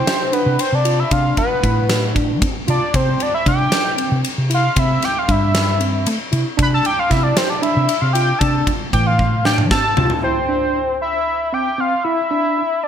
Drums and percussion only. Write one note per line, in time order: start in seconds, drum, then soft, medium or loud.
0.07 snare loud
0.07 ride medium
0.33 ride medium
0.59 ride medium
0.85 ride medium
1.11 kick loud
1.11 ride medium
1.37 kick medium
1.37 ride medium
1.64 kick medium
1.64 ride medium
1.90 snare loud
1.90 ride medium
2.16 kick medium
2.16 ride medium
2.42 kick loud
2.42 ride medium
2.68 ride medium
2.94 kick loud
2.94 ride medium
3.20 ride medium
3.46 kick medium
3.46 ride medium
3.72 snare loud
3.72 ride medium
3.98 ride medium
4.24 ride medium
4.51 ride medium
4.76 kick loud
4.76 ride medium
5.02 snare soft
5.02 ride medium
5.29 kick medium
5.29 ride medium
5.55 snare loud
5.55 ride medium
5.81 ride medium
6.06 ride medium
6.33 ride medium
6.59 kick loud
6.59 ride medium
6.85 ride medium
7.11 kick medium
7.11 snare soft
7.11 ride medium
7.37 snare loud
7.37 ride medium
7.63 ride medium
7.89 ride medium
8.15 ride medium
8.41 kick loud
8.41 ride medium
8.67 kick medium
8.67 ride medium
8.93 kick medium
8.93 ride medium
9.19 kick medium
9.45 snare medium
9.58 mid tom medium
9.71 kick loud
9.71 snare medium
9.97 floor tom loud
10.10 floor tom medium